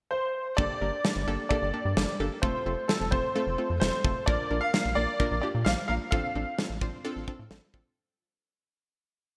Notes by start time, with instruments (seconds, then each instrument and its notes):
0.11 grand piano C5
0.57 analog synth bass G1, synth pluck A#3 D4 G4 A4, grand piano D5, kick
0.81 analog synth bass G1, synth pluck A#3 D4 G4 A#4
1.04 synth pluck A#3 D4 G4 A4, snare
1.16 analog synth bass G1
1.27 analog synth bass G1, synth pluck A#3 D4 G4 A4
1.49 synth pluck A#3 D4 G4 A4, grand piano D5, kick
1.62 analog synth bass G1
1.74 synth pluck A#3 D4 G4 A4
1.85 analog synth bass G2
1.97 analog synth bass G1, synth pluck A#3 D4 G4 A4, snare
2.20 analog synth bass G1, synth pluck A#3 D4 G4 A4
2.42 analog synth bass F1, synth pluck A3 C4 F4 A4, grand piano C5, kick
2.66 analog synth bass F1, synth pluck A3 C4 F4 A4
2.88 synth pluck A3 C4 F4 C5, grand piano A4, snare
3.01 analog synth bass F1
3.11 analog synth bass F1, synth pluck A3 C4 F4 A4, grand piano C5, kick
3.35 synth pluck A3 C4 F4 A4
3.47 analog synth bass F1
3.58 synth pluck A3 C4 F4 A4
3.70 analog synth bass F2
3.80 analog synth bass F1, synth pluck A3 C4 F4 A4, grand piano C5, snare
4.04 analog synth bass F1, synth pluck A3 C4 F4 A4, kick
4.26 analog synth bass A#1, synth pluck A#3 D4 F4 A#4, grand piano D5, kick
4.51 analog synth bass A#1, synth pluck A#3 D4 F4 A#4
4.61 grand piano F5
4.74 synth pluck A#3 D4 F4 A#4, snare
4.85 analog synth bass A#1
4.95 analog synth bass A#1, synth pluck A#3 D4 F4 A#4, grand piano D5
5.20 synth pluck A#3 D4 F4 A#4, kick
5.32 analog synth bass A#1
5.42 synth pluck A#3 D4 F4 G4, grand piano D5
5.55 analog synth bass A#2
5.65 analog synth bass A#1, synth pluck A#3 D4 F4 C5, grand piano F5, snare
5.88 analog synth bass A#1, synth pluck A#3 D4 F4 A#4, grand piano F5
6.11 analog synth bass A1, synth pluck C4 D4 F4 A4, grand piano F5, kick
6.35 analog synth bass A1, synth pluck C4 D4 F4 A4
6.58 synth pluck C4 D4 F4 A4, snare
6.70 analog synth bass A1
6.81 analog synth bass A1, synth pluck C4 D4 F4 C5, kick
7.05 synth pluck C4 D4 F4 A4
7.16 analog synth bass A1
7.28 synth pluck C4 D4 F4 A4, kick
7.39 analog synth bass A2
7.51 analog synth bass A1, synth pluck C4 D4 F4 A4, snare
7.74 analog synth bass A1, synth pluck C4 D4 F4 A4, kick